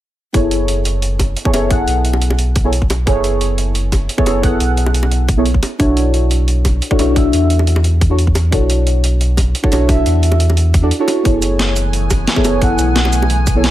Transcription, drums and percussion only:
0.34 kick loud
0.34 closed hi-hat medium
0.51 closed hi-hat medium
0.68 closed hi-hat medium
0.85 closed hi-hat medium
1.02 closed hi-hat medium
1.19 kick medium
1.19 closed hi-hat medium
1.19 high bongo medium
1.37 closed hi-hat medium
1.45 kick loud
1.54 closed hi-hat medium
1.54 high bongo medium
1.71 kick loud
1.71 closed hi-hat medium
1.88 closed hi-hat medium
2.05 closed hi-hat medium
2.13 high bongo medium
2.22 closed hi-hat medium
2.30 high bongo medium
2.39 closed hi-hat medium
2.56 kick loud
2.56 closed hi-hat medium
2.73 closed hi-hat medium
2.82 kick medium
2.90 closed hi-hat medium
2.90 high bongo medium
3.07 kick loud
3.07 closed hi-hat medium
3.24 closed hi-hat medium
3.41 closed hi-hat medium
3.58 closed hi-hat medium
3.75 closed hi-hat medium
3.92 kick medium
3.92 closed hi-hat medium
3.92 high bongo medium
4.09 closed hi-hat medium
4.18 kick loud
4.26 closed hi-hat medium
4.26 high bongo medium
4.43 kick loud
4.43 closed hi-hat medium
4.60 closed hi-hat medium
4.77 closed hi-hat medium
4.86 high bongo medium
4.94 closed hi-hat medium
5.03 high bongo medium
5.11 closed hi-hat medium
5.29 kick loud
5.29 closed hi-hat medium
5.46 closed hi-hat medium
5.54 kick medium
5.63 closed hi-hat medium
5.63 high bongo medium
5.80 kick loud
5.80 closed hi-hat medium
5.97 closed hi-hat medium
6.14 closed hi-hat medium
6.31 closed hi-hat medium
6.48 closed hi-hat medium
6.65 kick medium
6.65 closed hi-hat medium
6.65 high bongo medium
6.82 closed hi-hat medium
6.91 kick loud
6.99 closed hi-hat medium
6.99 high bongo medium
7.16 kick loud
7.16 closed hi-hat medium
7.33 closed hi-hat medium
7.50 closed hi-hat medium
7.59 high bongo medium
7.67 closed hi-hat medium
7.76 high bongo medium
7.84 closed hi-hat medium
8.01 kick loud
8.01 closed hi-hat medium
8.19 closed hi-hat medium
8.27 kick medium
8.35 closed hi-hat medium
8.35 high bongo medium
8.52 kick loud
8.52 closed hi-hat medium
8.70 closed hi-hat medium
8.87 closed hi-hat medium
9.04 closed hi-hat medium
9.21 closed hi-hat medium
9.37 kick medium
9.37 closed hi-hat medium
9.37 high bongo medium
9.55 closed hi-hat medium
9.64 kick loud
9.72 closed hi-hat medium
9.72 high bongo medium
9.89 kick loud
9.89 closed hi-hat medium
10.06 closed hi-hat medium
10.23 closed hi-hat medium
10.32 high bongo medium
10.40 closed hi-hat medium
10.50 high bongo medium
10.57 closed hi-hat medium
10.74 kick loud
10.74 closed hi-hat medium
10.91 closed hi-hat medium
11.08 closed hi-hat medium
11.08 high bongo medium
11.25 kick loud
11.25 closed hi-hat medium
11.42 closed hi-hat medium
11.42 cabasa medium
11.59 snare loud
11.59 closed hi-hat medium
11.76 closed hi-hat medium
11.76 cabasa medium
11.93 closed hi-hat medium
12.10 kick medium
12.10 closed hi-hat medium
12.10 high bongo medium
12.10 cabasa medium
12.28 snare loud
12.28 closed hi-hat medium
12.36 kick loud
12.45 closed hi-hat medium
12.45 high bongo medium
12.45 cabasa medium
12.62 kick loud
12.62 closed hi-hat medium
12.79 closed hi-hat medium
12.79 cabasa medium
12.96 snare loud
12.96 closed hi-hat medium
13.05 high bongo medium
13.13 closed hi-hat medium
13.13 cabasa medium
13.22 high bongo medium
13.30 closed hi-hat medium
13.47 kick loud
13.47 closed hi-hat medium
13.47 cabasa medium
13.64 snare loud
13.64 closed hi-hat medium

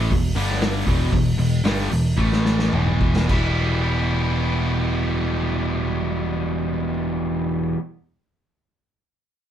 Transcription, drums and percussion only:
0.11 kick medium
0.11 open hi-hat medium
0.36 open hi-hat medium
0.50 snare soft
0.61 snare loud
0.61 open hi-hat medium
0.87 kick medium
0.87 open hi-hat medium
1.12 kick medium
1.12 open hi-hat medium
1.38 open hi-hat medium
1.65 snare loud
1.65 open hi-hat medium
1.79 snare soft
1.91 open hi-hat medium
2.18 kick medium
2.32 snare medium
2.46 snare medium
2.59 snare medium
2.73 mid tom medium
2.86 mid tom medium
3.01 kick medium
3.16 snare medium
3.29 kick loud
3.29 crash medium

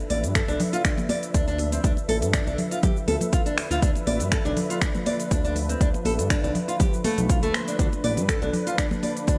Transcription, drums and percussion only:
0.10 open hi-hat loud
0.10 high conga loud
0.24 closed hi-hat soft
0.24 muted conga soft
0.24 shaker medium
0.35 finger snap medium
0.35 kick loud
0.35 closed hi-hat medium
0.35 shaker medium
0.48 muted conga medium
0.48 shaker soft
0.60 open hi-hat medium
0.60 low conga loud
0.73 closed hi-hat soft
0.73 shaker medium
0.85 finger snap loud
0.85 kick loud
0.85 closed hi-hat medium
0.85 muted conga soft
0.85 shaker medium
0.98 high conga medium
0.98 low conga medium
0.98 shaker soft
1.09 open hi-hat loud
1.09 muted conga medium
1.09 high conga loud
1.23 closed hi-hat soft
1.23 shaker medium
1.34 kick loud
1.34 closed hi-hat medium
1.34 muted conga soft
1.34 shaker medium
1.48 shaker soft
1.58 open hi-hat medium
1.58 muted conga medium
1.58 high conga medium
1.72 closed hi-hat soft
1.72 shaker medium
1.84 kick loud
1.84 closed hi-hat medium
1.84 shaker medium
1.97 muted conga medium
1.97 shaker soft
2.09 open hi-hat medium
2.09 high conga loud
2.22 closed hi-hat soft
2.22 muted conga soft
2.22 shaker medium
2.33 finger snap medium
2.33 kick loud
2.33 closed hi-hat medium
2.33 shaker medium
2.47 muted conga medium
2.47 shaker soft
2.58 open hi-hat medium
2.58 low conga loud
2.71 closed hi-hat soft
2.71 shaker medium
2.83 kick loud
2.83 closed hi-hat medium
2.83 muted conga soft
2.83 low conga loud
2.83 shaker medium
2.97 shaker soft
3.08 open hi-hat medium
3.08 muted conga medium
3.08 high conga loud
3.21 closed hi-hat soft
3.21 high conga medium
3.21 low conga medium
3.21 shaker medium
3.33 kick loud
3.33 closed hi-hat medium
3.33 muted conga soft
3.33 shaker medium
3.46 closed hi-hat soft
3.46 shaker soft
3.58 finger snap medium
3.58 open hi-hat medium
3.58 muted conga medium
3.58 high conga medium
3.71 closed hi-hat soft
3.71 shaker medium
3.82 kick loud
3.82 closed hi-hat medium
3.82 shaker medium
3.95 muted conga soft
3.95 shaker soft
4.07 open hi-hat medium
4.07 high conga loud
4.20 closed hi-hat soft
4.20 muted conga soft
4.20 shaker medium
4.32 finger snap medium
4.32 kick loud
4.32 closed hi-hat medium
4.32 shaker medium
4.45 muted conga medium
4.45 shaker soft
4.57 open hi-hat medium
4.57 low conga loud
4.70 closed hi-hat soft
4.70 shaker medium
4.81 finger snap loud
4.81 kick loud
4.81 closed hi-hat medium
4.81 muted conga soft
4.81 shaker medium
4.95 high conga medium
4.95 low conga loud
4.95 shaker soft
5.06 open hi-hat medium
5.06 muted conga soft
5.06 high conga loud
5.20 closed hi-hat soft
5.20 shaker medium
5.31 kick loud
5.31 closed hi-hat medium
5.31 muted conga soft
5.31 shaker medium
5.45 shaker soft
5.55 open hi-hat medium
5.55 muted conga soft
5.55 high conga medium
5.69 closed hi-hat soft
5.69 shaker medium
5.81 kick loud
5.81 closed hi-hat medium
5.81 shaker medium
5.94 muted conga medium
5.94 shaker soft
6.05 open hi-hat medium
6.05 high conga medium
6.19 closed hi-hat soft
6.19 muted conga soft
6.19 shaker medium
6.30 finger snap medium
6.30 kick loud
6.30 closed hi-hat medium
6.30 shaker medium
6.44 muted conga soft
6.44 shaker soft
6.55 open hi-hat medium
6.55 low conga loud
6.69 closed hi-hat soft
6.69 shaker medium
6.80 kick loud
6.80 closed hi-hat medium
6.80 muted conga soft
6.80 low conga loud
6.80 shaker medium
6.93 shaker soft
7.04 open hi-hat medium
7.04 muted conga medium
7.04 high conga loud
7.18 closed hi-hat soft
7.18 high conga medium
7.18 low conga medium
7.18 shaker medium
7.29 kick loud
7.29 closed hi-hat medium
7.29 muted conga soft
7.29 shaker medium
7.43 closed hi-hat soft
7.43 shaker soft
7.54 finger snap medium
7.54 open hi-hat medium
7.54 muted conga medium
7.54 high conga medium
7.68 closed hi-hat soft
7.68 shaker medium
7.79 kick loud
7.79 closed hi-hat medium
7.79 shaker medium
7.93 muted conga soft
7.93 shaker soft
8.04 open hi-hat medium
8.04 high conga medium
8.17 closed hi-hat soft
8.17 muted conga soft
8.17 shaker medium
8.29 finger snap medium
8.29 kick loud
8.29 closed hi-hat medium
8.29 shaker medium
8.42 muted conga soft
8.42 shaker soft
8.53 open hi-hat medium
8.53 low conga loud
8.67 closed hi-hat soft
8.67 shaker medium
8.78 finger snap medium
8.78 kick loud
8.78 closed hi-hat medium
8.78 muted conga soft
8.78 shaker medium
8.91 high conga medium
8.91 low conga medium
8.91 shaker soft
9.03 open hi-hat medium
9.03 muted conga medium
9.03 high conga loud
9.17 closed hi-hat soft
9.17 shaker medium
9.27 kick loud
9.27 closed hi-hat medium
9.27 muted conga soft
9.27 shaker medium

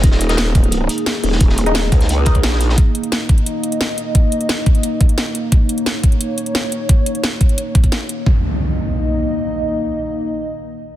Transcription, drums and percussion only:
0.04 kick loud
0.04 closed hi-hat medium
0.12 snare medium
0.21 closed hi-hat medium
0.29 snare medium
0.29 closed hi-hat soft
0.37 snare loud
0.37 closed hi-hat medium
0.47 closed hi-hat soft
0.55 kick loud
0.55 closed hi-hat medium
0.64 closed hi-hat soft
0.72 closed hi-hat medium
0.89 closed hi-hat medium
0.98 closed hi-hat soft
1.06 snare loud
1.06 closed hi-hat medium
1.15 closed hi-hat soft
1.24 closed hi-hat medium
1.24 open hi-hat medium
1.32 snare soft
1.40 kick loud
1.40 closed hi-hat medium
1.50 snare soft
1.58 closed hi-hat medium
1.66 closed hi-hat soft
1.75 snare loud
1.75 closed hi-hat medium
1.84 closed hi-hat soft
1.92 kick loud
1.92 closed hi-hat medium
2.01 snare soft
2.01 closed hi-hat soft
2.09 closed hi-hat medium
2.09 closed hi-hat loud
2.26 kick loud
2.26 closed hi-hat medium
2.35 kick medium
2.35 closed hi-hat soft
2.43 snare loud
2.43 closed hi-hat medium
2.52 snare medium
2.61 closed hi-hat medium
2.69 snare soft
2.78 kick loud
2.78 closed hi-hat medium
2.95 closed hi-hat medium
3.03 closed hi-hat soft
3.12 snare loud
3.12 closed hi-hat medium
3.29 kick loud
3.29 closed hi-hat medium
3.38 closed hi-hat soft
3.46 closed hi-hat medium
3.64 closed hi-hat medium
3.72 closed hi-hat soft
3.81 snare loud
3.81 closed hi-hat medium
3.98 closed hi-hat medium
4.15 kick loud
4.15 closed hi-hat medium
4.32 closed hi-hat medium
4.41 closed hi-hat soft
4.49 snare loud
4.49 closed hi-hat medium
4.66 kick loud
4.66 closed hi-hat medium
4.75 closed hi-hat soft
4.83 closed hi-hat medium
5.01 kick loud
5.01 closed hi-hat medium
5.09 closed hi-hat soft
5.18 snare loud
5.18 closed hi-hat medium
5.35 closed hi-hat medium
5.52 kick loud
5.52 closed hi-hat medium
5.69 closed hi-hat medium
5.78 closed hi-hat soft
5.86 snare loud
5.86 closed hi-hat medium
6.03 kick loud
6.03 closed hi-hat medium
6.12 closed hi-hat soft
6.21 closed hi-hat medium
6.38 closed hi-hat medium
6.46 closed hi-hat soft
6.55 snare loud
6.55 closed hi-hat medium
6.72 closed hi-hat medium
6.89 kick loud
6.89 closed hi-hat medium
7.06 closed hi-hat medium
7.15 closed hi-hat soft
7.24 snare loud
7.24 closed hi-hat loud
7.41 kick loud
7.41 closed hi-hat medium
7.49 closed hi-hat soft
7.58 closed hi-hat medium
7.75 kick loud
7.75 closed hi-hat medium
7.84 kick medium
7.84 closed hi-hat soft
7.92 snare loud
7.92 closed hi-hat medium
8.09 closed hi-hat medium
8.26 kick loud

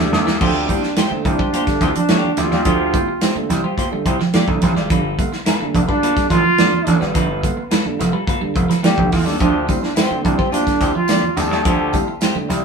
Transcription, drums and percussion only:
0.13 snare medium
0.13 high conga medium
0.13 low conga medium
0.27 snare medium
0.41 kick loud
0.41 crash loud
0.55 muted conga soft
0.69 kick medium
0.69 closed hi-hat medium
0.69 high conga medium
0.83 snare soft
0.96 snare loud
0.96 closed hi-hat medium
0.96 muted conga soft
1.12 muted conga soft
1.12 high conga medium
1.25 kick medium
1.25 closed hi-hat medium
1.25 low conga medium
1.39 kick medium
1.54 closed hi-hat medium
1.54 high conga medium
1.67 kick medium
1.67 snare soft
1.67 closed hi-hat soft
1.81 kick medium
1.81 snare soft
1.81 closed hi-hat medium
1.95 closed hi-hat medium
2.09 snare loud
2.09 closed hi-hat medium
2.09 muted conga soft
2.09 high conga medium
2.24 low conga medium
2.37 snare soft
2.37 closed hi-hat medium
2.37 high conga medium
2.37 low conga medium
2.51 snare soft
2.65 kick loud
2.65 closed hi-hat medium
2.65 muted conga soft
2.94 kick loud
2.94 closed hi-hat medium
2.94 high conga medium
3.21 snare loud
3.21 closed hi-hat loud
3.36 high conga medium
3.49 snare soft
3.49 closed hi-hat medium
3.49 low conga medium
3.78 kick medium
3.78 closed hi-hat medium
3.78 high conga medium
3.92 muted conga soft
4.06 kick medium
4.06 closed hi-hat medium
4.20 snare soft
4.34 snare loud
4.34 closed hi-hat medium
4.34 muted conga soft
4.34 high conga medium
4.48 kick medium
4.48 low conga medium
4.62 kick medium
4.62 snare soft
4.62 closed hi-hat medium
4.62 high conga medium
4.62 low conga medium
4.76 snare soft
4.89 kick loud
4.89 closed hi-hat medium
4.89 muted conga soft
5.19 kick medium
5.19 closed hi-hat medium
5.19 high conga medium
5.33 snare soft
5.46 snare loud
5.46 closed hi-hat loud
5.46 muted conga soft
5.61 high conga medium
5.74 kick medium
5.74 closed hi-hat medium
5.74 low conga medium
5.89 kick medium
6.03 closed hi-hat medium
6.03 high conga medium
6.17 kick medium
6.17 snare soft
6.17 closed hi-hat soft
6.30 kick medium
6.30 snare soft
6.30 closed hi-hat medium
6.58 snare loud
6.58 closed hi-hat medium
6.58 muted conga soft
6.58 high conga medium
6.73 low conga medium
6.87 snare soft
6.87 closed hi-hat medium
6.87 high conga medium
6.87 low conga medium
7.01 snare soft
7.14 kick loud
7.14 closed hi-hat medium
7.14 muted conga soft
7.43 kick medium
7.43 closed hi-hat medium
7.43 high conga medium
7.71 snare loud
7.71 closed hi-hat loud
7.85 muted conga soft
7.85 high conga medium
7.99 snare soft
7.99 closed hi-hat medium
7.99 low conga medium
8.27 kick loud
8.27 closed hi-hat medium
8.27 muted conga soft
8.27 high conga medium
8.42 muted conga soft
8.56 kick loud
8.56 closed hi-hat medium
8.70 snare soft
8.70 closed hi-hat medium
8.84 snare loud
8.84 closed hi-hat medium
8.84 muted conga soft
8.84 high conga medium
8.98 kick medium
8.98 low conga medium
9.12 kick medium
9.12 snare soft
9.12 open hi-hat medium
9.12 high conga medium
9.12 low conga medium
9.27 snare soft
9.40 kick loud
9.40 closed hi-hat medium
9.40 tambourine soft
9.54 muted conga soft
9.68 kick medium
9.68 closed hi-hat medium
9.68 tambourine medium
9.68 high conga medium
9.83 snare soft
9.96 snare loud
9.96 closed hi-hat loud
9.96 tambourine loud
9.96 muted conga soft
10.11 high conga medium
10.25 kick medium
10.25 closed hi-hat medium
10.25 low conga medium
10.39 kick medium
10.52 closed hi-hat medium
10.52 tambourine medium
10.52 muted conga soft
10.52 high conga medium
10.67 kick medium
10.67 snare soft
10.67 closed hi-hat soft
10.81 kick loud
10.81 snare soft
10.81 closed hi-hat medium
10.81 tambourine medium
11.08 snare loud
11.08 closed hi-hat medium
11.08 tambourine loud
11.08 muted conga soft
11.08 high conga medium
11.23 muted conga soft
11.23 low conga medium
11.37 snare soft
11.37 closed hi-hat medium
11.37 tambourine medium
11.37 high conga medium
11.37 low conga medium
11.52 snare soft
11.65 kick loud
11.65 closed hi-hat medium
11.65 tambourine soft
11.79 muted conga soft
11.93 kick medium
11.93 closed hi-hat medium
11.93 tambourine medium
11.93 high conga medium
12.21 snare loud
12.21 closed hi-hat medium
12.21 tambourine medium
12.21 muted conga soft
12.36 high conga medium
12.50 snare soft
12.50 closed hi-hat medium
12.50 low conga medium

